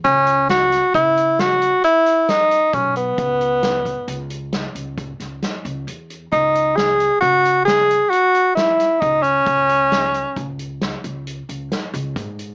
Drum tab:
HH |xxxxxxxxxxxxxx|xxxxxxxxxxxxxx|xxxxxxxxxxxxxx|xxxxxxxxxxxxxx|
SD |--oo--o---o---|--o---o--oo---|--o---o---oo--|--o---o---o-o-|
BD |o---o-------o-|o--o----o-----|o---o-------o-|o---o-------o-|